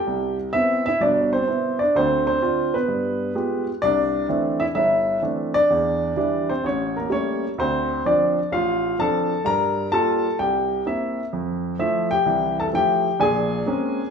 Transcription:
upright piano
Already playing: G4 G5
0.07 C2
0.53 B3 C4 E4 E5
0.86 E4 E5
1.00 G1 B2 D4 D5
1.33 C4 C5
1.47 B3 C4 E4
1.79 D4 D5
1.95 D2 D3 C4 C5
2.27 C4 C5
2.42 C4 D4 F4
2.74 B3 B4
2.88 G2
3.35 G#3 B3 F4 G4
3.82 C2 D4 D5
4.29 E3 A3 C4 D4
4.60 E4 E5
4.75 G1 E4 E5
5.22 E3 A3 C4 D4
5.54 D4 D5
5.70 E2
6.16 E3 G3 D4
6.50 C4 C5
6.64 A1 C#4 C#5
6.97 A#3 A#4
7.10 G3 A3 A#3 C#4 C#5
7.58 D2 C4 C5
8.05 F3 C4 D4 D5
8.52 A1 F4 F5
8.99 F3 C4 D4 A4 A5
9.45 G2 A#4 A#5
9.92 G3 A#3 F4 A4 A5
10.39 C2 G4 G5
10.86 A#3 C4 E4 E5
11.33 F2
11.79 F3 A3 E4 E5
12.11 G4 G5
12.26 C2 E3
12.60 A4 A5
12.73 F3 A3 E4 G4 G5
13.20 A#1 A#2 G#4 G#5
13.66 G#3 A#3 C4 C#4

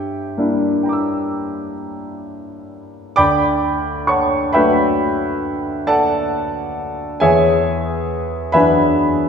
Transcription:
grand piano
Already playing: G2 G4 C#5 E5 G5
0.37 G3 A#3 D4 E4
0.83 G5 A#5
0.89 D6 E6
3.16 D2 D5 G5 B5 D6
4.07 C#5 F#5 A5 C#6
4.53 F#3 A3 D4 F#4 B4 E5 G5 B5
5.87 A4 D5 F#5 A5
7.20 E2 G#4 C#5 E5 G#5
8.52 E3 F#3 D4 F#4 B4 E5 G#5 B5

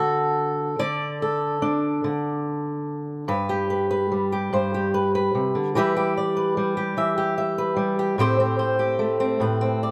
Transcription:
steel-string acoustic guitar
Already playing: D3 D4 A4 B4
0.00 F#4
0.79 D3 D5
1.22 A4
1.62 D4
2.04 D3
3.28 G2 B4
3.49 G4
3.70 B4
3.91 B4
4.12 G3
4.32 G4
4.53 G2 C5
4.74 G4
4.94 B4
5.15 B4
5.35 C3
5.55 D3
5.75 E3 G3 G4 B4 E5
5.97 G4
6.17 D5
6.37 B4
6.57 G3
6.77 G4
6.97 E3 E5
7.18 G4
7.38 E5
7.58 B4
7.77 G3
7.99 G4
8.18 A2 A3 C4 G4 C5
8.40 C4
8.59 C5
8.79 G4
8.99 A3
9.20 C4
9.40 A2 B4
9.61 C4
9.83 D5

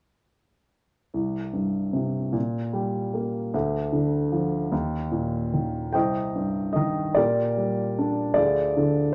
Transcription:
grand piano
1.14 C2
1.53 G2
1.93 C3
2.33 A#2
2.73 G3
3.14 A#3
3.54 D2
3.93 D3
4.32 F3
4.72 D#2
5.11 A#2
5.53 D#3
5.93 C2 C5 D#5 G5
6.35 G2
6.73 D#3 D#5
7.14 A#2 G4 A#4 D5
7.57 G3
7.98 D4
8.34 D2 F4 G#4 D5
8.77 D3

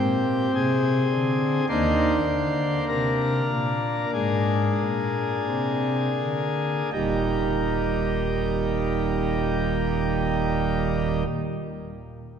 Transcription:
pipe organ
Already playing: C4 G4
0.00 A#2
0.55 C3 G#4
1.11 D3
1.69 D#2 D#3 A#3 D4 C5
2.28 D3
2.88 C3 A#4
3.50 A#2
4.14 G#2 G#4
4.80 A#2
5.48 C3
6.20 D3
6.93 D#1 D#2 A#2 G3 A#3 D#4 G4

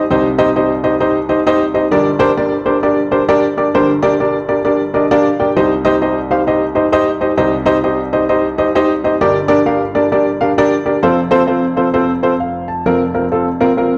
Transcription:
upright piano
0.10 C2 C3 D#4 G4 C5 D#5
0.38 D#4 G4 C5 D#5
0.56 D#4 G4 C5 D#5
0.84 D#4 G4 C5 D#5
1.00 D#4 G4 C5 D#5
1.29 D#4 G4 C5 D#5
1.47 D#4 G4 C5 D#5
1.74 D#4 G4 C5 D#5
1.91 G1 G2 D4 G4 A#4 D5
2.19 D4 G4 A#4 C5
2.37 D4 G4 A#4 D5
2.66 D4 G4 A#4 C5
2.83 D4 G4 A#4 D5
3.11 D4 G4 A#4 C5
3.29 D4 G4 A#4 D5
3.57 D4 G4 A#4 D5
3.74 G1 G2 D4 G4 A#4 C5
4.03 D4 G4 A#4 D5
4.20 D4 G4 A#4 D5
4.48 D4 G4 A#4 D5
4.65 D4 G4 A#4 D5
4.94 D4 G4 A#4 D5 D#5
5.11 D4 G4 A#4 D5 F5
5.40 D4 G4 A#4 D5 G5
5.56 C2 C3 D#4 G4 C5 D#5
5.85 D#4 G4 C5 D#5
6.02 D#4 G4 C5 D#5
6.31 D#4 G4 C5 F5
6.47 D#4 G4 C5 D#5
6.75 D#4 G4 C5 D#5
6.92 D#4 G4 C5 D#5
7.21 D#4 G4 C5 D#5
7.37 C2 C3 D#4 G4 C5 D#5
7.66 D#4 G4 C5 D#5
7.83 D#4 G4 C5 D#5
8.13 D#4 G4 C5 D#5
8.29 D#4 G4 C5 D#5
8.58 D#4 G4 C5 D#5
8.75 D#4 G4 C5 D#5
9.04 D#4 G4 C5 D#5
9.21 G1 G2 D4 G4 A#4 D5
9.48 D4 G4 A#4 D5
9.66 D4 G4 A#4 F5
9.95 D4 G4 A#4 D5
10.12 D4 G4 A#4 D5
10.41 D4 G4 A#4 F5
10.58 D4 G4 A#4 D5
10.86 D4 G4 A#4 D5
11.03 F1 F2 C4 F4 A4 C5
11.31 C4 F4 A4 C5
11.47 C4 F4 A4 C5
11.77 C4 F4 A4 C5
11.93 C4 F4 A4 C5
12.23 C4 F4 A4 C5
12.40 F5
12.68 A5
12.86 F1 F2 C4 F4 A#4
13.14 C4 F4 A#4
13.32 C4 F4 A4
13.61 C4 F4 A#4
13.77 C4 F4 A#4

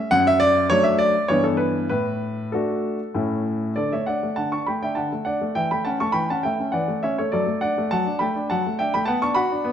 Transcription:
grand piano
Already playing: E5
0.11 F#2 F#5
0.27 E5
0.40 D5
0.70 F#3 A3 D4 C#5
0.83 E5
0.98 D5
1.28 G2 E3 B3 E4 C#5
1.44 A4
1.57 B4
1.89 A2 B4
2.52 A3 D4 F#4 A4
3.15 A2 A3 C#4 E4
3.76 D3 A4 D5
3.92 A3 C#5 E5
4.06 D4 D5 F#5
4.23 A3
4.36 D3 F#5 A5
4.52 D4 A5 C#6
4.67 A3 G5 B5
4.82 D4 E5 G5
4.95 D3 F#5 A5
5.12 A3
5.25 D4 D5 F#5
5.41 A3
5.55 E3 E5 G5
5.71 A3 G5 B5
5.85 C#4 F#5 A5
6.00 A3 A5 C#6
6.12 E3 G5 B5
6.30 C#4 F#5 A5
6.43 A3 E5 G5
6.60 C#4
6.72 E3 D5 F#5
6.88 A3
7.03 C#4 C#5 E5
7.18 A3 A4 C#5
7.32 F#3 A4 D5
7.47 A3
7.61 D4 D5 F#5
7.78 A3
7.91 F#3 F#5 A5
8.06 D4
8.19 A3 G5 B5
8.36 D4
8.50 F#3 F#5 A5
8.67 A3
8.79 D4 E5 G5
8.94 A3 G5 B5
9.05 B3 F#5 A5
9.22 D4 A5 C#6
9.35 F#4 F#5 B5
9.52 D4
9.64 B3

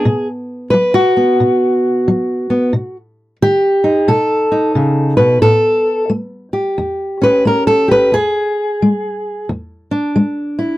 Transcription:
steel-string acoustic guitar
Already playing: B3 G#4
0.05 B2
0.70 F#3 B4
0.94 F#4
1.17 B3
1.40 B2
2.08 F#3
2.50 B3
2.73 B2
3.42 D#3 G4
3.84 D#4
4.08 B2 A4
4.52 D#4
4.75 C#3
5.17 B2 B4
5.42 A2 A4
6.10 A3
6.53 G4
6.78 E2
7.21 C#4 B4
7.45 A3 A#4
7.67 A4
7.88 G4 B4
8.12 E2 G#4
8.82 G#3
9.49 E2
9.91 D4
10.16 G#3
10.59 E4

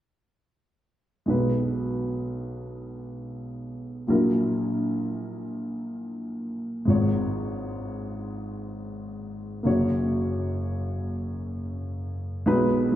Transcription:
upright piano
1.26 B1 B2 G#3 D#4 B4
4.07 A#1 A#2 F#3 E4 A#4
6.85 G#1 G#2 G#3 F4
6.90 C#5
9.63 F#1 F#2 A#3 F#4 C#5
12.46 B1 B2 G#3 D#4 B4
12.92 G#3

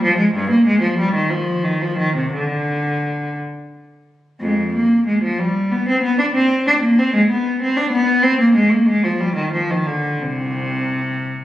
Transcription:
cello
0.03 F3
0.18 G#3
0.34 G2
0.51 A#3
0.67 G#3
0.82 F3
0.99 G3
1.15 D#3
1.30 F3
1.64 D#3
1.81 F3
1.98 D#3
2.17 C3
2.33 D3
4.40 F2 G#3
4.73 A#3
5.07 G#3
5.23 F3
5.39 G3
5.72 B3
5.89 C4
6.03 B3
6.19 D4
6.34 C4
6.67 D4
6.82 A#3
6.99 C4
7.15 G#3
7.30 B3
7.62 C4
7.77 D4
7.92 B3
8.23 C4
8.40 A#3
8.55 G#3
8.71 A#3
8.87 G#3
9.04 F3
9.20 G3
9.36 D#3
9.53 F3
9.70 D#3
9.87 D3
10.21 C2 C3

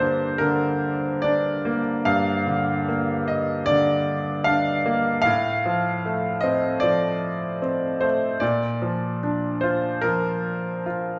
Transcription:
grand piano
Already playing: G2 D3 A#3 D5
0.00 D4 C5
0.38 D3 A#4
1.22 D4 D5
1.65 A#3
2.05 G2 F5
2.47 D3
2.88 A#3
3.28 D#5
3.66 D3 D5
4.44 D4 F5
4.86 A#3
5.22 A2 F5
5.66 F3
6.06 A3
6.41 C4 D#5
6.80 F3 D5
7.62 C4
8.01 A3 C5
8.40 A#2 D5
8.82 F3
9.23 D4
9.61 F4 C5
10.01 F3 A#4
10.86 F4

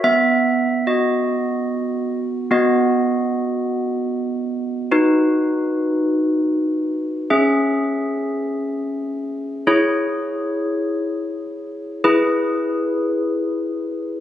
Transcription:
handbells
0.04 B3 E5
0.87 F#4 D#5
2.51 B3 F#4 D#5
4.91 D#4 F#4 B4
7.30 C#4 G#4 E5
9.67 E4 G#4 C#5
12.04 E4 G#4 B4

